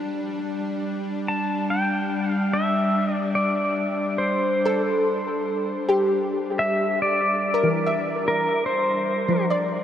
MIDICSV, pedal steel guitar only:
0, 0, Header, 1, 2, 480
1, 0, Start_track
1, 0, Tempo, 821918
1, 23, Time_signature, 4, 2, 24, 8
1, 5745, End_track
2, 0, Start_track
2, 0, Title_t, "Pedal steel guitar"
2, 0, Program_c, 0, 26
2, 750, Note_on_c, 0, 81, 93
2, 992, Note_off_c, 0, 81, 0
2, 995, Note_on_c, 0, 79, 90
2, 1351, Note_off_c, 0, 79, 0
2, 1351, Note_on_c, 0, 77, 90
2, 1480, Note_on_c, 0, 76, 88
2, 1483, Note_off_c, 0, 77, 0
2, 1831, Note_off_c, 0, 76, 0
2, 1831, Note_on_c, 0, 74, 88
2, 1957, Note_off_c, 0, 74, 0
2, 1957, Note_on_c, 0, 74, 86
2, 2443, Note_on_c, 0, 72, 71
2, 2445, Note_off_c, 0, 74, 0
2, 3610, Note_off_c, 0, 72, 0
2, 3849, Note_on_c, 0, 76, 101
2, 4097, Note_off_c, 0, 76, 0
2, 4100, Note_on_c, 0, 74, 95
2, 4835, Note_on_c, 0, 70, 78
2, 4843, Note_off_c, 0, 74, 0
2, 5055, Note_off_c, 0, 70, 0
2, 5057, Note_on_c, 0, 72, 69
2, 5517, Note_off_c, 0, 72, 0
2, 5745, End_track
0, 0, End_of_file